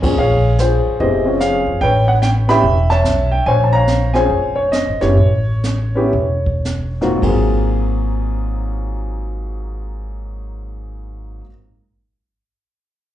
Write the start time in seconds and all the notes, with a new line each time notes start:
Already playing: F2
0.02 A#2 C4 C#4 F4 G#4, kick, crash
0.18 A#1 G#4 C#5 F5, brush sweep, kick
0.59 F4 G#4 C5, snare, hi-hat pedal
0.86 muted upright bass stroke
1.00 F1 B3 C4 E4 G4 G#4 C5 D#5, brush sweep, kick
1.25 C4 C#4 F4 G#4
1.41 G#4 C#5 F5, snare, hi-hat pedal
1.66 E2
1.81 A1 B4 C#5 G5, brush sweep, kick
2.08 F#5
2.22 G5, snare, hi-hat pedal
2.48 B3 C#4 E4 G4 E5 G5 B5, snare
2.63 E1, brush sweep, kick
2.90 C#5 E5 A5, snare
3.04 B1, snare, hi-hat pedal
3.32 G5
3.46 A#1 C5 C#5 G#5, brush sweep, kick
3.64 A5
3.73 C#5 F5 A#5
3.87 snare, hi-hat pedal
4.14 C4 C#4 F4 G#4 C5 C#5 G#5, snare
4.30 F1, brush sweep, kick
4.55 C#5
4.72 D#5, snare, hi-hat pedal
4.87 G#1
5.00 F#1 B3 C#4 E4 G4 C#5, snare
5.17 A1, brush sweep, kick
5.64 snare, hi-hat pedal
5.95 B3 C#4 E4 G4
6.13 E1, brush sweep, kick
6.46 kick
6.65 snare, hi-hat pedal
7.01 G#2 A#3 C4 F4 F#4, snare
7.18 G#2 F#3
7.22 G#1 A#3 G#4, kick, crash
7.26 C4 F4